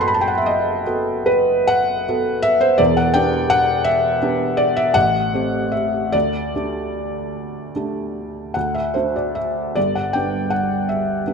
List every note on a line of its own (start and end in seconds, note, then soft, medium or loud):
0.00 2.82 F#1 medium
0.00 2.81 F#2 medium
0.00 0.82 B3 medium
0.00 0.82 F#4 medium
0.00 0.82 A4 medium
0.00 0.28 F#5 loud
0.00 0.21 G5 medium
0.00 0.14 A5 medium
0.00 0.08 B5 medium
0.00 2.81 C6 medium
0.08 0.14 B5 medium
0.14 0.21 A5 medium
0.21 0.29 G5 medium
0.28 0.37 F#5 medium
0.38 0.47 E5 medium
0.46 1.26 D#5 medium
0.86 2.04 B3 soft
0.86 2.04 F#4 medium
0.86 2.04 A4 medium
1.26 1.68 B4 loud
1.68 2.43 F#5 loud
2.09 2.76 B3 medium
2.09 2.76 F#4 medium
2.09 2.76 A4 medium
2.42 2.61 E5 loud
2.61 2.79 C5 loud
2.78 3.14 E1 medium
2.78 3.14 E2 medium
2.78 2.96 D5 loud
2.97 3.15 F#5 loud
3.14 4.18 B3 medium
3.14 4.18 D4 medium
3.14 4.18 G4 medium
3.14 3.50 G5 loud
3.50 3.85 F#5 loud
3.84 4.58 E5 loud
4.22 4.92 B3 medium
4.22 4.92 D4 medium
4.22 4.92 G4 medium
4.57 4.76 D5 loud
4.77 4.95 E5 loud
4.94 5.32 A1 medium
4.94 5.73 F#5 loud
5.34 6.10 A3 soft
5.34 6.10 C4 medium
5.34 6.11 G4 medium
5.72 6.13 E5 medium
6.12 6.53 D2 medium
6.12 8.54 D5 loud
6.55 7.71 A3 soft
6.55 7.72 D4 soft
6.55 7.72 G4 soft
7.76 8.52 A3 soft
7.76 8.52 D4 soft
7.76 8.52 G4 soft
8.54 8.95 D2 medium
8.54 8.75 F#5 medium
8.74 8.95 E5 medium
8.94 9.72 A3 soft
8.94 9.72 D4 soft
8.94 9.73 F#4 soft
8.94 9.15 C5 medium
9.16 9.36 D5 medium
9.35 9.75 E5 medium
9.75 10.13 G1 medium
9.75 10.14 G2 medium
9.75 9.95 D5 loud
9.95 10.14 F#5 medium
10.13 11.22 B3 soft
10.13 11.23 D4 soft
10.13 11.23 G4 medium
10.13 10.51 G5 medium
10.50 10.88 F#5 medium
10.89 11.33 E5 medium
11.27 11.33 B3 soft
11.27 11.33 D4 soft
11.27 11.33 G4 soft